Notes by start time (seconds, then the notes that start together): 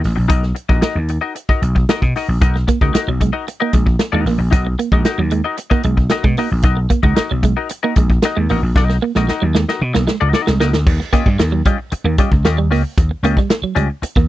0.01 A1, muted clean electric guitar stroke, snare, open hi-hat
0.16 A#1, muted clean electric guitar stroke
0.28 B1 D#4 F#4 A#4 D#5, kick, closed hi-hat
0.43 snare
0.55 muted clean electric guitar stroke, closed hi-hat
0.69 A#1 D#4 F#4 A#4 D#5, kick
0.81 D#4 F#4 A#4 D#5, snare, closed hi-hat
0.95 D#2
1.09 muted clean electric guitar stroke, closed hi-hat
1.21 D#4 F#4 A#4 D#5
1.35 muted clean electric guitar stroke, closed hi-hat
1.49 D#4 F#4 A#4 D#5, kick
1.62 B1, muted clean electric guitar stroke, closed hi-hat
1.75 muted clean electric guitar stroke, kick
1.89 D#4 F#4 A#4 D#5, snare, closed hi-hat
2.02 B2, muted clean electric guitar stroke, kick
2.16 D#4 F#4 A#4 D#5, snare, open hi-hat
2.28 A#1
2.41 B1 D#4 F#4 A#4 D#5, kick, closed hi-hat
2.55 muted clean electric guitar stroke, snare
2.67 A#3, muted clean electric guitar stroke, kick, closed hi-hat
2.81 C#2 G#3 D#4 F#4 A#4 D#5, kick
2.93 D#4 F#4 A#4 D#5, muted slap bass stroke, muted clean electric guitar stroke, snare, closed hi-hat
3.07 B1 F#3
3.20 G#3, muted clean electric guitar stroke, kick, closed hi-hat
3.33 D#4 F#4 A#4 D#5
3.47 muted clean electric guitar stroke, closed hi-hat
3.60 A#3 D#4 F#4 A#4 D#5
3.73 A#1 G#3, muted clean electric guitar stroke, kick, closed hi-hat
3.86 muted clean electric guitar stroke, kick
3.99 muted clean electric guitar stroke, snare, closed hi-hat
4.12 D#2 G#3 D#4 F#4 A#4 D#5
4.25 A1 A#3, snare, open hi-hat
4.38 A#1, muted clean electric guitar stroke
4.51 B1 D#4 F#4 A#4 D#5, kick, closed hi-hat
4.67 muted clean electric guitar stroke
4.79 A#3, muted clean electric guitar stroke, closed hi-hat
4.92 A#1 G#3 D#4 F#4 A#4 D#5, kick
5.05 D#4 F#4 A#4 D#5, muted slap bass stroke, muted clean electric guitar stroke, snare, closed hi-hat
5.18 D#2 F#3
5.31 G#3, muted clean electric guitar stroke, closed hi-hat
5.44 D#4 F#4 A#4 D#5
5.57 muted clean electric guitar stroke, closed hi-hat
5.70 A#3 D#4 F#4 A#4 D#5, kick
5.83 B1 G#3, muted clean electric guitar stroke, closed hi-hat
5.97 muted clean electric guitar stroke, kick
6.10 D#4 F#4 A#4 D#5, muted clean electric guitar stroke, snare, closed hi-hat
6.24 B2 G#3, muted clean electric guitar stroke, kick
6.37 A#3 D#4 F#4 A#4 D#5, snare, open hi-hat
6.52 A#1
6.62 B1 D#4 F#4 A#4 D#5, kick, closed hi-hat
6.77 muted clean electric guitar stroke
6.90 A#3, muted clean electric guitar stroke, kick, closed hi-hat
7.03 C#2 G#3 D#4 F#4 A#4 D#5, kick
7.15 D#4 F#4 A#4 D#5, muted clean electric guitar stroke, muted slap bass stroke, snare, closed hi-hat
7.31 B1 F#3
7.43 G#3, muted clean electric guitar stroke, kick, closed hi-hat
7.57 D#4 F#4 A#4 D#5
7.69 muted clean electric guitar stroke, closed hi-hat
7.83 A#3 D#4 F#4 A#4 D#5
7.96 A#1 G#3, muted clean electric guitar stroke, kick, closed hi-hat
8.10 muted clean electric guitar stroke, kick
8.22 D#4 F#4 A#4 D#5, muted clean electric guitar stroke, snare, closed hi-hat
8.37 D#2 G#3, muted clean electric guitar stroke
8.49 A1 A#3 D#4 F#4 A#4 D#5, snare, open hi-hat
8.63 A#1, muted clean electric guitar stroke
8.76 B1 D#4 F#4 A#4 D#5, kick, snare
8.89 muted clean electric guitar stroke, snare
9.02 A#3, muted clean electric guitar stroke
9.15 A#1 G#3 D#4 F#4 A#4 D#5, snare
9.28 D#4 F#4 A#4 D#5, muted clean electric guitar stroke, snare
9.42 D#2 F#3
9.55 G#3, muted clean electric guitar stroke, snare
9.69 D#4 F#4 A#4 D#5, snare
9.81 B2, muted clean electric guitar stroke
9.94 B1 A#3, muted clean electric guitar stroke, snare
10.07 G#3, snare
10.21 C#2 D#4 F#4 A#4 D#5
10.33 D#4 F#4 A#4 D#5, muted clean electric guitar stroke, snare
10.47 C2 G#3, muted clean electric guitar stroke, snare
10.60 C#2 A#3 D#4 F#4 A#4 D#5, snare
10.73 D2, snare
10.87 D#2, kick, crash
11.00 muted clean electric guitar stroke, snare
11.13 A#3 C#4 F4 G4 D#5, kick, closed hi-hat
11.26 G2 G3, kick
11.39 D#2, muted clean electric guitar stroke, snare, closed hi-hat
11.52 F#3
11.65 G3 C#4 F4 G4 D#5, kick, closed hi-hat
11.78 muted clean electric guitar stroke
11.92 muted clean electric guitar stroke, muted slap bass stroke, closed hi-hat
12.04 D#2 A#3
12.18 G3 C#4 F4 G4 D#5, kick, closed hi-hat
12.32 C#2, muted clean electric guitar stroke, kick
12.44 D#2 C#4 F4 G4 D#5, muted clean electric guitar stroke, snare, closed hi-hat
12.58 G3, muted clean electric guitar stroke
12.71 C#2 A#3 C#4 F4 G4 D#5, snare, open hi-hat
12.83 muted clean electric guitar stroke
12.98 D#2, kick, closed hi-hat
13.11 muted clean electric guitar stroke
13.23 C#2 A#3 C#4 F4 G4 D#5, closed hi-hat
13.37 G3, kick
13.50 muted clean electric guitar stroke, snare, closed hi-hat
13.62 F#3, muted slap bass stroke
13.75 C#2 G3 C#4 F4 G4 D#5, closed hi-hat
14.02 muted slap bass stroke, muted clean electric guitar stroke, closed hi-hat
14.16 D#2 A#3, kick